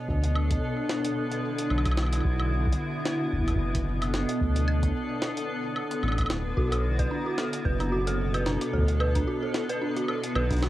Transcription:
0.00 10.69 B3 medium
0.00 0.96 D4 medium
0.00 0.95 A4 medium
0.08 0.59 D2 loud
0.08 2.25 D3 medium
0.08 kick loud
0.23 closed hi-hat medium
0.28 3.12 E4 medium
0.35 high woodblock medium
0.50 kick loud
0.50 closed hi-hat medium
0.77 2.99 F#4 medium
0.89 snare loud
1.04 2.25 D5 medium
1.04 closed hi-hat medium
1.32 closed hi-hat soft
1.59 closed hi-hat medium
1.70 2.22 B1 loud
1.70 high woodblock soft
1.78 high woodblock soft
1.86 kick loud
1.86 closed hi-hat medium
1.86 high woodblock medium
1.92 high woodblock medium
1.97 snare loud
1.97 high woodblock soft
2.03 high woodblock soft
2.07 high woodblock soft
2.13 closed hi-hat medium
2.13 high woodblock soft
2.15 high woodblock soft
2.21 kick loud
2.21 high woodblock soft
2.25 2.76 B1 loud
2.25 4.41 B2 medium
2.40 high woodblock medium
2.58 5.28 D4 medium
2.67 kick loud
2.73 closed hi-hat medium
3.06 snare loud
3.23 5.28 A4 medium
3.23 4.41 C#5 medium
3.33 4.25 F#1 loud
3.33 kick soft
3.38 kick medium
3.42 kick medium
3.48 kick medium
3.48 closed hi-hat soft
3.48 high woodblock soft
3.51 kick medium
3.56 kick loud
3.75 kick medium
3.75 closed hi-hat medium
4.02 closed hi-hat soft
4.02 high woodblock medium
4.14 snare loud
4.29 closed hi-hat medium
4.41 4.92 D2 loud
4.41 6.57 D3 medium
4.41 kick loud
4.56 closed hi-hat soft
4.68 high woodblock medium
4.83 kick loud
4.83 closed hi-hat medium
5.22 snare loud
5.37 7.44 E4 medium
5.37 7.44 F#4 medium
5.37 6.57 D5 medium
5.37 closed hi-hat medium
5.76 high woodblock medium
5.91 closed hi-hat medium
6.03 6.26 A1 loud
6.03 high woodblock soft
6.08 high woodblock soft
6.12 high woodblock soft
6.18 kick loud
6.18 closed hi-hat soft
6.18 high woodblock soft
6.21 high woodblock medium
6.26 6.53 D1 medium
6.26 snare loud
6.26 high woodblock medium
6.30 high woodblock soft
6.57 7.08 B1 loud
6.57 8.73 B2 medium
6.57 6.69 F#4 medium
6.57 kick medium
6.72 6.81 A4 medium
6.72 closed hi-hat soft
6.72 high woodblock medium
6.99 7.08 B4 loud
6.99 kick loud
6.99 closed hi-hat medium
7.11 7.23 D4 medium
7.24 7.35 F#4 medium
7.24 9.60 A4 medium
7.38 7.50 A4 medium
7.38 snare loud
7.53 9.60 D4 medium
7.53 8.73 C#5 medium
7.53 closed hi-hat medium
7.65 8.57 F#1 loud
7.65 7.77 B4 medium
7.65 kick loud
7.80 7.89 D4 medium
7.80 closed hi-hat soft
7.80 high woodblock soft
7.92 8.04 F#4 medium
8.07 8.16 A4 medium
8.07 closed hi-hat medium
8.34 8.43 B4 loud
8.34 closed hi-hat soft
8.34 high woodblock medium
8.46 8.58 D4 medium
8.46 snare loud
8.61 8.70 F#4 medium
8.61 closed hi-hat medium
8.73 9.24 D2 loud
8.73 10.69 D3 medium
8.73 8.85 A4 medium
8.73 kick soft
8.78 kick medium
8.82 kick medium
8.88 closed hi-hat soft
8.97 10.69 E4 medium
8.97 9.12 B4 loud
8.97 high woodblock medium
9.15 9.25 D4 medium
9.15 10.69 F#4 medium
9.15 kick loud
9.15 closed hi-hat medium
9.27 9.39 F#4 medium
9.42 9.52 A4 medium
9.54 snare loud
9.69 9.79 B4 loud
9.69 10.69 D5 medium
9.69 closed hi-hat medium
9.81 9.93 D4 medium
9.96 10.06 F#4 medium
9.96 closed hi-hat soft
10.08 10.20 A4 medium
10.08 high woodblock medium
10.23 closed hi-hat medium
10.35 10.69 B1 loud
10.35 10.47 B4 loud
10.35 high woodblock medium
10.51 10.60 D4 medium
10.51 kick loud
10.51 closed hi-hat soft
10.52 closed hi-hat soft
10.56 closed hi-hat soft
10.58 closed hi-hat soft
10.60 10.69 F#4 medium
10.60 snare loud
10.60 closed hi-hat soft
10.60 high woodblock medium

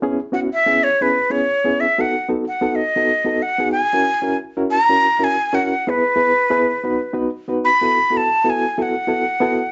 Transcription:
0.02 0.19 B3 medium
0.02 0.19 C#4 medium
0.02 0.19 E4 medium
0.02 0.19 G#4 medium
0.32 0.48 B3 medium
0.32 0.48 C#4 medium
0.32 0.49 E4 medium
0.32 0.49 F#4 medium
0.32 0.40 F#5 medium
0.53 0.85 E5 medium
0.66 0.87 B3 medium
0.66 0.87 C#4 medium
0.66 0.88 E4 medium
0.66 0.88 G#4 medium
0.84 1.03 C#5 medium
1.01 1.17 B3 medium
1.01 1.17 C#4 medium
1.01 1.17 E4 medium
1.01 1.17 G#4 medium
1.01 1.33 B4 medium
1.30 1.46 B3 medium
1.30 1.46 C#4 medium
1.30 1.46 E4 medium
1.30 1.46 G#4 medium
1.30 1.82 C#5 medium
1.64 1.85 B3 medium
1.64 1.85 C#4 medium
1.64 1.85 E4 medium
1.64 1.85 G#4 medium
1.80 2.02 E5 medium
1.98 2.14 B3 medium
1.98 2.14 D#4 medium
1.98 2.14 F#4 medium
1.98 2.14 A4 medium
1.98 2.29 F#5 medium
2.28 2.44 B3 medium
2.28 2.44 D#4 medium
2.28 2.44 F#4 medium
2.28 2.44 A4 medium
2.48 2.77 F#5 medium
2.61 2.82 B3 medium
2.61 2.82 D#4 medium
2.61 2.82 F#4 medium
2.61 2.82 A4 medium
2.75 3.44 D#5 medium
2.96 3.11 B3 medium
2.96 3.11 D#4 medium
2.96 3.12 F#4 medium
2.96 3.12 A4 medium
3.25 3.40 B3 medium
3.25 3.41 D#4 medium
3.25 3.41 F#4 medium
3.25 3.41 A4 medium
3.42 3.71 F#5 loud
3.59 3.79 B3 medium
3.59 3.80 D#4 medium
3.59 3.80 F#4 medium
3.59 3.80 G#4 medium
3.72 4.37 G#5 loud
3.93 4.09 C#4 medium
3.93 4.09 E4 medium
3.93 4.09 F#4 medium
3.93 4.09 A#4 medium
4.22 4.37 C#4 medium
4.22 4.38 E4 medium
4.22 4.38 F#4 medium
4.22 4.38 A#4 medium
4.57 4.77 C#4 medium
4.57 4.77 E4 medium
4.57 4.77 F#4 medium
4.57 4.77 A#4 medium
4.71 5.25 A#5 loud
4.89 5.05 C#4 medium
4.89 5.06 E4 medium
4.89 5.06 F#4 medium
4.89 5.06 A#4 medium
5.19 5.35 C#4 medium
5.19 5.35 E4 medium
5.19 5.35 F#4 medium
5.19 5.35 A#4 medium
5.24 5.56 G#5 loud
5.53 5.74 C#4 medium
5.53 5.74 E4 medium
5.53 5.74 F#4 medium
5.53 5.74 A#4 medium
5.53 5.91 F#5 medium
5.87 6.03 B3 medium
5.87 6.03 E4 medium
5.87 6.03 G#4 medium
5.87 6.04 B4 medium
5.87 7.15 B4 loud
6.16 6.32 B3 medium
6.16 6.32 E4 medium
6.16 6.32 G#4 medium
6.16 6.32 B4 medium
6.50 6.71 B3 medium
6.50 6.71 E4 medium
6.50 6.71 G#4 medium
6.50 6.71 B4 loud
6.84 7.00 B3 medium
6.84 7.00 D#4 medium
6.84 7.00 F#4 medium
6.84 7.00 B4 medium
7.13 7.29 B3 medium
7.13 7.29 D#4 medium
7.13 7.29 F#4 medium
7.13 7.30 B4 medium
7.48 7.68 B3 medium
7.48 7.69 D#4 medium
7.48 7.69 F#4 medium
7.48 7.69 B4 medium
7.65 8.19 B5 loud
7.81 7.97 B3 medium
7.81 7.97 E4 medium
7.81 7.97 F#4 medium
7.81 7.97 A4 medium
8.10 8.26 B3 medium
8.10 8.26 E4 medium
8.10 8.26 F#4 medium
8.10 8.27 A4 medium
8.17 8.51 A5 medium
8.44 8.65 B3 medium
8.44 8.65 E4 medium
8.44 8.65 F#4 medium
8.44 8.66 A4 medium
8.50 8.84 G#5 loud
8.78 8.94 B3 medium
8.78 8.94 E4 medium
8.78 8.94 F#4 medium
8.78 8.94 A4 medium
8.82 9.72 F#5 medium
9.07 9.23 B3 medium
9.07 9.23 E4 medium
9.07 9.24 F#4 medium
9.07 9.24 A4 medium
9.40 9.62 B3 loud
9.40 9.62 E4 medium
9.40 9.62 F#4 medium
9.40 9.62 A4 medium

